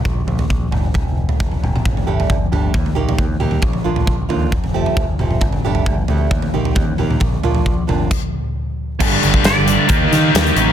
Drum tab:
CC |----------------|----------------|----------------|----------------|
HH |----------------|----------------|----------------|----------------|
SD |----------------|----------------|----------------|----------------|
T2 |------o------ooo|--------------oo|--------------oo|--------------oo|
FT |o-oo--o-o--oo---|oo-o--o-oo-oo---|oo-o--o-oo-oo---|oo-o--o-oo-oo---|
BD |o---o---o---o---|o---o---o---o---|o---o---o---o---|o---o---o---o---|

CC |--------x-------|x---------------|
HH |----------------|--x-x-x-x-x-xxx-|
SD |----------------|----o-----o-o---|
T2 |------o---------|----------------|
FT |o-oo--o---------|----------------|
BD |o---o---o-------|o--o----o-------|